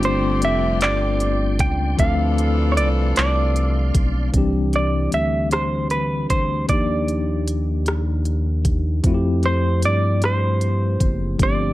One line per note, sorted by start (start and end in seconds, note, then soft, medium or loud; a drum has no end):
0.00 0.45 G1 loud
0.00 1.56 D3 medium
0.00 1.94 G3 medium
0.00 1.95 A3 medium
0.00 1.56 C4 medium
0.00 1.96 C4 medium
0.00 1.96 D4 medium
0.00 4.30 D4 medium
0.00 1.97 F4 medium
0.00 1.56 G4 medium
0.00 4.30 D5 medium
0.00 1.96 G5 medium
0.00 4.30 C6 medium
0.00 closed hi-hat soft
0.05 0.40 C5 medium
0.42 0.84 F1 medium
0.42 0.80 E5 medium
0.42 closed hi-hat medium
0.81 1.61 G1 loud
0.81 1.60 D5 medium
0.81 clap loud
0.81 closed hi-hat medium
1.20 closed hi-hat soft
1.59 1.95 C#2 medium
1.59 1.97 G5 loud
1.59 kick medium
1.59 closed hi-hat medium
1.97 2.80 D2 loud
1.97 3.91 E3 medium
1.97 4.29 F3 medium
1.97 3.91 F3 medium
1.97 4.30 A3 medium
1.97 4.31 C4 medium
1.97 3.91 A4 medium
1.97 4.32 F5 medium
1.97 2.72 F5 loud
1.97 kick loud
1.97 closed hi-hat medium
2.01 4.31 D4 medium
2.01 4.32 F5 medium
2.38 closed hi-hat soft
2.72 2.77 C#5 medium
2.77 3.13 C2 loud
2.77 2.88 D5 medium
2.77 closed hi-hat medium
3.16 3.92 C2 medium
3.16 4.01 D5 medium
3.16 clap loud
3.16 closed hi-hat medium
3.56 closed hi-hat soft
3.94 4.30 B1 medium
3.94 kick loud
3.94 closed hi-hat medium
4.32 5.09 C2 medium
4.32 6.65 E3 medium
4.32 6.65 G3 medium
4.32 6.66 C4 medium
4.32 kick medium
4.32 closed hi-hat medium
4.36 6.67 D4 medium
4.36 6.67 G4 medium
4.73 5.14 D5 medium
4.73 closed hi-hat soft
5.12 6.27 D2 medium
5.12 5.52 E5 medium
5.12 closed hi-hat medium
5.51 5.89 C5 medium
5.51 cross-stick loud
5.51 closed hi-hat medium
5.90 6.30 B4 medium
5.90 closed hi-hat soft
6.30 6.66 D2 medium
6.30 6.67 C5 medium
6.30 kick medium
6.30 closed hi-hat medium
6.68 9.01 D#2 medium
6.68 9.00 F3 medium
6.68 9.01 A#3 medium
6.68 9.01 D4 soft
6.68 9.02 D#4 medium
6.68 8.62 D5 medium
6.68 kick loud
6.68 closed hi-hat medium
6.73 9.03 G4 medium
7.08 closed hi-hat soft
7.48 closed hi-hat medium
7.86 cross-stick loud
7.86 closed hi-hat medium
8.25 closed hi-hat soft
8.65 kick medium
8.65 closed hi-hat medium
9.03 9.85 F2 medium
9.03 11.35 F3 medium
9.03 11.36 A3 medium
9.03 11.37 C4 medium
9.03 11.37 E4 medium
9.03 kick loud
9.03 closed hi-hat medium
9.08 9.13 F#4 medium
9.14 11.41 G4 medium
9.43 9.85 C5 medium
9.43 closed hi-hat soft
9.82 10.97 G2 medium
9.82 10.25 D5 loud
9.82 closed hi-hat medium
10.22 11.43 C5 medium
10.22 cross-stick loud
10.22 closed hi-hat medium
10.61 closed hi-hat soft
11.00 11.36 F#1 loud
11.00 kick medium
11.00 closed hi-hat medium
11.38 11.73 G1 medium
11.38 11.73 F3 medium
11.38 11.73 A3 medium
11.38 11.73 C4 medium
11.38 kick loud
11.38 closed hi-hat medium
11.42 11.73 D4 soft
11.42 11.73 G4 medium
11.42 11.73 D5 medium